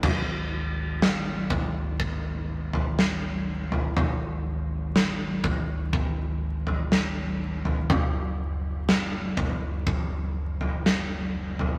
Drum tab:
CC |x---------------|----------------|----------------|
SD |----o-------o---|----o-------o---|----o-------o---|
FT |o-----o----o---o|o-----o-o--o---o|o-----o-o--o---o|
BD |o-----o-o-------|------o-o-------|o-----o-o-------|